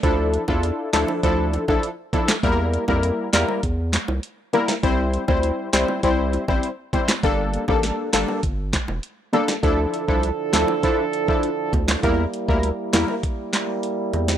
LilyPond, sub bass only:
\new Staff \with { instrumentName = "Sub bass" } { \clef bass \time 4/4 \key d \minor \tempo 4 = 100 d,8. e,8 r16 d,16 r16 d,8. bes,,16 r4 | e,8. f,8 r16 e,16 r16 e,8. c,16 r4 | c,8. d,8 r16 c,16 r16 c,8. a,,16 r4 | g,,8. a,,8 r16 g,,16 r16 g,,8. e,,16 r4 |
d,8 r16 c,8 r16 d,16 r4. r16 d,8 | e,8 r16 d,8 r16 e,16 r4. r16 e,8 | }